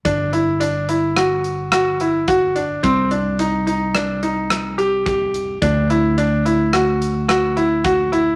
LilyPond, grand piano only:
\new Staff \with { instrumentName = "Grand piano" } { \time 5/4 \key c \lydian \tempo 4 = 108 d'8 e'8 d'8 e'8 fis'4 fis'8 e'8 fis'8 d'8 | c'8 d'8 ees'8 ees'8 d'8 ees'4 g'8 g'4 | d'8 e'8 d'8 e'8 fis'4 fis'8 e'8 fis'8 e'8 | }